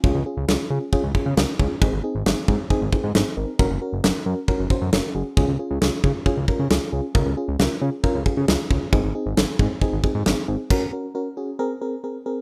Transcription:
<<
  \new Staff \with { instrumentName = "FM electric piano" } { \time 4/4 \key des \major \tempo 4 = 135 <des' f' aes'>8 <des' f' aes'>8 <des' f' aes'>8 <des' f' aes'>8 <des' f' aes'>8 <des' f' aes'>8 <des' f' bes'>8 <des' f' aes'>8 | <c' ees' aes'>8 <c' ees' aes'>8 <c' ees' aes'>8 <c' ees' aes'>8 <c' ees' aes'>8 <c' ees' aes'>8 <c' ees' aes'>8 <c' ees' bes'>8 | <des' ges' bes'>8 <des' ges' bes'>8 <des' ges' bes'>8 <des' ges' bes'>8 <des' ges' bes'>8 <des' ges' c''>8 <des' ges' bes'>8 <des' ges' aes'>8 | <des' f' aes'>8 <des' f' aes'>8 <des' f' aes'>8 <des' f' aes'>8 <des' f' aes'>8 <des' f' bes'>8 <des' f' aes'>8 <des' f' aes'>8 |
<des' f' bes'>8 <des' f' aes'>8 <des' f' bes'>8 <des' f' aes'>8 <des' f' bes'>8 <des' f' aes'>8 <des' f' aes'>8 <des' f' aes'>8 | <c' ees' aes'>8 <c' ees' aes'>8 <c' ees' aes'>8 <c' ees' aes'>8 <c' ees' aes'>8 <c' ees' aes'>8 <c' ees' aes'>8 <c' ees' aes'>8 | <des' ges' bes'>8 <des' ges' bes'>8 <des' ges' bes'>8 <des' ges' aes'>8 <c' aes' bes'>8 <c' aes' bes'>8 <c' aes' bes'>8 <c' aes' bes'>8 | }
  \new Staff \with { instrumentName = "Analog synth bass" } { \clef bass \time 4/4 \key des \major des,16 des,16 r16 des,16 des,16 r16 des16 r8 des,16 r16 des16 des,16 r16 des,16 r16 | aes,,16 aes,,16 r16 aes,,16 aes,,16 r16 aes,16 r8 aes,,16 r16 aes,16 aes,,16 r16 aes,,16 r16 | ges,,16 ges,,16 r16 ges,,16 ges,,16 r16 ges,16 r8 ges,,16 r16 ges,16 ges,,16 r16 ges,,16 r16 | des,16 des,16 r16 des,16 des,16 r16 des16 r8 des,16 r16 des16 des,16 r16 des,16 r16 |
des,16 des,16 r16 des,16 des,16 r16 des16 r8 des,16 r16 des16 des,16 r16 des,16 r16 | aes,,16 aes,,16 r16 aes,,16 aes,,16 r16 aes,16 r8 aes,,16 r16 aes,16 aes,,16 r16 aes,,16 r16 | r1 | }
  \new DrumStaff \with { instrumentName = "Drums" } \drummode { \time 4/4 bd4 sn4 bd8 bd8 sn8 bd8 | bd4 sn8 bd8 bd8 bd8 sn4 | bd4 sn4 bd8 bd8 sn4 | bd4 sn8 bd8 bd8 bd8 sn4 |
bd4 sn4 bd8 bd8 sn8 bd8 | bd4 sn8 bd8 bd8 bd8 sn4 | <cymc bd>4 r4 r4 r4 | }
>>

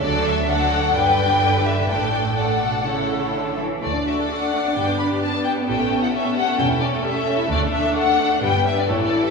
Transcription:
<<
  \new Staff \with { instrumentName = "Violin section" } { \time 4/4 \key d \major \tempo 4 = 130 d''8 e''8 fis''4 g''4. e''8 | g''4 fis''2 r4 | d''8 e''8 fis''4 g''8 b''8 a''8 g''8 | g''8. fis''16 e''8 fis''8 g''8 d''8 e''4 |
d''8 e''8 fis''4 g''8 e''16 d''16 cis''16 d''8 e''16 | }
  \new Staff \with { instrumentName = "Violin section" } { \time 4/4 \key d \major << { d''4 d''4 d''2 | d''4 d''4 cis''4. r8 | d''1 | a'1~ |
a'2 b'4 a'4 | } \\ { a'4 a'4 b'2 | a'4 a'4 a'4. r8 | a16 d'16 fis'16 a'16 fis'16 d'16 a16 d'16 g16 b16 d'16 g'16 d'16 b16 g16 b16 | g16 a16 cis'16 e'16 cis'16 a16 g16 a16 cis'16 e'16 cis'16 a16 g16 a16 cis'16 e'16 |
a16 d'16 a16 d'16 a16 d'16 a16 d'16 g16 b16 d'16 b16 a16 cis'16 e'16 g'16 | } >> }
  \new Staff \with { instrumentName = "Viola section" } { \time 4/4 \key d \major << { d'4 d'4 d'2 | d'4 d'4 e'4. r8 | d'1 | cis'1 |
d'2 b4 e'4 | } \\ { fis4 fis4 d2 | a4 a4 a4. r8 | a2 b2~ | b2 a2~ |
a2 g4 e4 | } >> }
  \new Staff \with { instrumentName = "Cello section" } { \clef bass \time 4/4 \key d \major d,2 g,2 | a,4 a,8 b,8 cis4 d8 e8 | d,4 r4 g,4 r4 | a,4 r4 e,4 r4 |
d,4 r4 g,4 a,4 | }
  \new Staff \with { instrumentName = "Double bass section" } { \clef bass \time 4/4 \key d \major d,2 g,,2 | a,,2.~ a,,8 r8 | d,4 r4 g,,4 r4 | a,,4 r4 e,,4 r4 |
d,4 r4 g,,4 a,,4 | }
>>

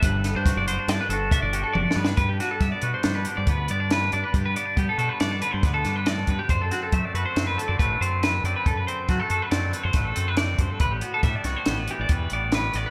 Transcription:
<<
  \new Staff \with { instrumentName = "Clean electric guitar" } { \time 5/4 \key g \major \tempo 4 = 139 b'8 a'16 c''8 d''16 c''8 d''16 b'16 a'8 e''16 d''16 g'16 a'16 d''8 b'8 | b'16 g'16 fis'16 a'16 e''16 d''16 b'16 c''8 b'16 g'16 d''16 b'8 d''8 b'8 d''16 b'16 | g'16 b'16 d''8 g'16 a'16 a'16 b'16 d''8 b'16 c''16 b'16 a'8 b'16 d''8 b'16 g'16 | c''16 a'16 fis'16 a'16 e''16 d''16 b'16 c''8 b'16 a'16 d''16 b'8 c''8 b'8 d''16 b'16 |
a'16 b'16 c''8 fis'16 a'16 a'16 b'16 d''8 b'16 c''16 b'16 a'8 b'16 d''8 c''16 a'16 | b'16 g'16 fis'16 a'16 e''16 d''16 b'16 c''8 b'16 g'16 d''16 b'8 d''8 b'8 d''16 b'16 | }
  \new Staff \with { instrumentName = "Clean electric guitar" } { \time 5/4 \key g \major << { r8 b16 d'16 fis'8 b16 d'8. fis'8 d'8 fis'4 b16 d'16 | r8 d'8 b8 fis'8 d'4 b8 b16 d'8. d'8 | r8 b16 d'16 b8 fis'8 b16 d'8. b8 d'4. | r8 c'8 a8 fis'8 c'4 a8 c'4 c'8 |
r8 c'8 a8 fis'8 c'4 a8 c'4. | r8 b8 g8 fis'8 b4 g8 b4 b8 | } \\ { g,2 g,2 g,4 | g,2~ g,8 d4. g,4 | g,2~ g,8 d4. a,8 g,8 | fis,2~ fis,8 d4. fis,4 |
fis,2~ fis,8 d4. fis,8 g,8 | a,2~ a,8 e4. a,4 | } >> }
  \new Staff \with { instrumentName = "Fingered electric bass" } { \clef bass \time 5/4 \key g \major g,,8. g,8 fis,,8 r16 g,16 r16 g,,8 r16 g,,8 r16 fis,,16 r16 g,8 | g,8 r8 g16 r16 b,16 r16 g,8 r16 g,16 d,8 g,4 g,16 r16 | g,8 r8 g16 r16 b,16 r16 g,8 r16 g,16 d,8 g,4 g,16 r16 | fis,8 r8 fis16 r16 fis,16 r16 fis,8 r16 fis,16 a,,8 fis,4 fis,16 r16 |
fis,8 r8 fis16 r16 fis,16 r16 fis,8 r16 fis,16 a,,8 fis,4 fis,16 r16 | a,,8 r8 a,16 r16 c,16 r16 a,,8 r16 a,,16 e,8 a,,4 a,,16 r16 | }
  \new DrumStaff \with { instrumentName = "Drums" } \drummode { \time 5/4 <hh bd>8 <hh sn>8 <hh bd sn>8 hh8 <hh sn>8 hh8 <hh bd>8 hh8 \tuplet 3/2 { tommh8 sn8 sn8 } | <hh bd>8 <hh sn>8 <hh bd sn>8 hh8 <hh sn>8 hh8 <hh bd>8 hh8 <hh sn>8 hh8 | <hh bd>8 hh8 <hh bd>8 hh8 <hh sn>8 hh8 <hh bd sn>8 <hh sn>8 <hh sn>8 <hh bd>8 | <hh bd>8 <hh sn>8 <hh bd>8 hh8 <hh sn>8 hh8 <hh bd>8 hh8 <hh sn>8 hh8 |
<hh bd>8 hh8 <hh bd sn>8 hh8 <hh sn>8 hh8 <hh bd sn>8 hh8 <hh sn>8 <hh bd>8 | <hh bd>8 hh8 <hh bd sn>8 <hh sn>8 <hh sn>8 hh8 <hh bd>8 hh8 <hh sn>8 <hh sn>8 | }
>>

